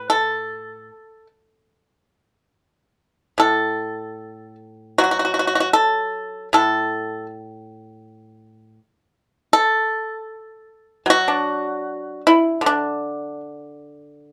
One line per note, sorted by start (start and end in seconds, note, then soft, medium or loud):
0.00 0.90 A2 medium
0.10 1.26 A4 medium
3.38 5.74 A2 soft
3.38 4.55 A4 medium
4.98 7.30 F#3 soft
4.98 5.02 F#4 medium
5.04 5.10 F#4 soft
5.11 5.18 F#4 medium
5.19 5.24 F#4 soft
5.25 5.32 F#4 soft
5.34 5.38 F#4 soft
5.39 5.46 F#4 soft
5.47 5.54 F#4 soft
5.55 5.59 F#4 medium
5.60 5.68 F#4 medium
5.73 6.48 A4 medium
6.53 8.79 A2 medium
6.53 7.26 A4 medium
9.53 11.03 A4 loud
11.06 13.40 F#3 medium
11.10 12.21 F#4 medium
11.28 12.61 D4 soft
12.27 12.61 E4 medium
12.61 14.32 D3 soft
12.66 14.32 D4 medium